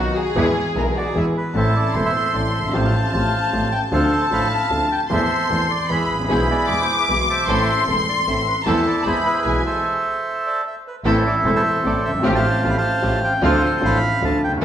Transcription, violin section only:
0.00 0.16 F#4 medium
0.17 0.79 G#4 medium
0.79 0.88 A#4 medium
0.88 0.97 G#4 medium
0.97 1.06 F#4 medium
1.06 1.15 G#4 medium
1.55 1.92 A5 medium
1.94 2.74 C6 medium
2.73 3.91 A5 medium
3.92 5.06 A5 medium
5.10 5.86 C6 medium
5.89 6.27 B5 medium
6.29 6.66 B5 medium
6.69 7.48 D6 loud
7.48 8.66 C6 loud
8.65 9.05 A5 medium
9.05 9.45 B5 medium
9.45 9.85 G#5 medium

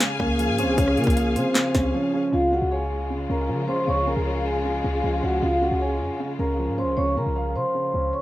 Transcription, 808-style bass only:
0.20 0.50 C#2 loud
0.49 0.65 G#2 loud
0.63 0.77 C#2 loud
0.78 0.99 C#2 loud
0.97 1.06 C#3 loud
1.07 1.37 C2 loud
1.36 1.45 C#3 loud
1.75 1.93 C#2 loud
2.33 2.61 C#2 loud
2.62 3.27 C#2 loud
3.30 3.51 C#2 loud
3.49 3.67 C#3 loud
3.88 4.08 C#2 loud
4.07 4.16 C2 loud
4.17 4.82 C#2 loud
4.84 5.03 C#2 loud
5.04 5.22 C#2 loud
5.23 5.42 C#2 loud
5.42 5.70 C#2 loud
5.71 6.02 C#2 loud
6.00 6.10 F2 medium
6.39 6.70 C#2 loud
6.68 6.84 G#2 loud
6.83 6.97 C#2 loud
6.97 7.18 C#2 loud
7.17 7.26 C#3 loud
7.26 7.57 C2 loud
7.55 7.65 C#3 loud
7.94 8.13 C#2 loud

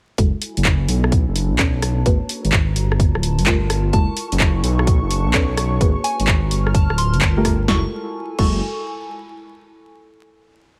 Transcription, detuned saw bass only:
0.18 0.32 F#1 loud
0.57 0.87 F#1 medium
0.89 1.25 B1 medium
1.27 1.52 F#1 medium
1.51 1.81 B1 medium
1.82 2.04 B1 medium
2.06 2.20 G#1 loud
2.44 2.75 G#1 medium
2.76 3.12 G1 medium
3.15 3.40 D1 medium
3.38 3.68 G1 medium
3.70 3.92 G1 medium
3.93 4.07 F#1 loud
4.32 4.62 F#1 medium
4.64 5.00 B1 loud
5.03 5.27 F#1 medium
5.26 5.56 B1 loud
5.57 5.79 B1 medium
5.81 5.94 G#1 loud
6.20 6.50 G#1 loud
6.51 6.87 G1 loud
6.90 7.15 D1 medium
7.13 7.43 G1 loud
7.45 7.67 G1 medium
7.68 7.84 F#1 loud
8.39 8.60 F#1 medium

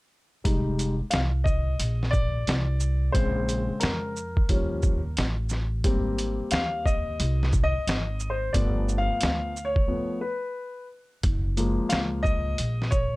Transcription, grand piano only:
0.44 0.93 G3 medium
0.44 0.93 G#3 soft
0.44 0.94 D#4 medium
1.11 1.18 F5 medium
1.44 2.09 D#5 medium
2.11 3.16 D5 loud
3.12 4.12 C#3 medium
3.12 4.12 G#3 medium
3.12 4.12 C4 medium
3.12 3.83 C5 medium
3.80 5.12 A#4 medium
4.49 4.98 F3 medium
4.49 4.98 G3 soft
4.49 4.98 C#4 medium
5.84 8.50 G3 medium
5.84 8.50 A#3 soft
5.84 8.50 C4 medium
6.52 6.86 F5 loud
6.86 7.49 D#5 loud
7.64 8.33 D#5 loud
8.30 8.54 C5 medium
8.53 9.51 F3 soft
8.53 9.51 A3 soft
8.53 9.51 B3 medium
8.53 8.95 D5 medium
8.98 9.68 F5 loud
9.65 10.18 C#5 medium
9.88 10.19 F3 soft
9.88 10.19 A3 soft
9.88 10.19 B3 soft
10.21 10.85 B4 medium
11.57 12.54 F3 medium
11.57 12.54 G#3 soft
11.57 12.55 A#3 medium
11.89 11.97 F5 loud
12.23 12.93 D#5 loud
12.91 13.16 C#5 loud

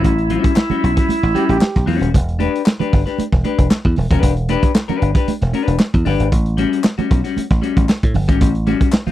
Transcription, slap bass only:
0.05 0.36 A1 loud
0.71 muted slap bass stroke soft
0.84 0.94 B1 medium
1.10 muted slap bass stroke soft
1.23 1.33 A1 medium
1.49 1.59 A1 medium
1.76 1.86 B1 medium
1.87 1.98 E2 medium
2.01 2.11 D#1 medium
2.14 2.46 E1 loud
2.80 muted slap bass stroke soft
2.93 3.04 G1 medium
3.19 muted slap bass stroke soft
3.33 3.43 E1 medium
3.59 3.68 E1 medium
3.85 3.95 E2 medium
3.98 4.09 E1 loud
4.11 4.21 D#1 medium
4.23 4.55 E1 loud
4.89 muted slap bass stroke soft
5.02 5.13 G1 medium
5.28 muted slap bass stroke soft
5.42 5.52 E1 medium
5.67 5.77 E1 medium
5.94 6.04 E2 medium
6.06 6.17 G1 loud
6.20 6.30 G#1 medium
6.32 6.64 A1 loud
6.99 muted slap bass stroke soft
7.11 7.22 B1 medium
7.38 muted slap bass stroke soft
7.51 7.60 A1 medium
7.77 7.86 A1 medium
8.03 8.13 A2 medium
8.15 8.29 G1 loud
8.29 8.39 G#1 medium
8.41 8.73 A1 loud
9.06 muted slap bass stroke soft

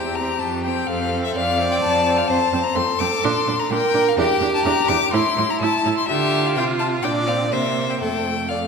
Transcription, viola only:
0.00 0.17 C4 medium
0.19 0.41 C4 medium
0.65 1.11 C4 medium
1.12 1.58 C4 medium
1.59 2.05 C4 medium
2.06 2.29 C4 medium
2.30 2.38 C4 medium
2.53 2.61 C4 medium
2.75 2.83 C4 medium
3.01 3.09 C4 medium
3.24 3.32 D4 medium
3.47 3.55 D4 medium
3.72 3.80 D4 medium
3.94 4.02 D4 medium
4.18 4.26 D4 medium
4.42 4.50 D4 medium
4.66 4.74 D4 medium
4.89 4.97 D4 medium
5.14 5.22 E4 loud
5.38 5.46 E4 medium
5.63 5.71 E4 loud
5.86 5.94 E4 medium
6.09 7.06 F4 medium
7.04 7.30 D4 medium
7.29 7.51 C4 medium
7.52 8.03 A#3 medium
8.01 8.51 A3 medium
8.51 8.68 A3 medium

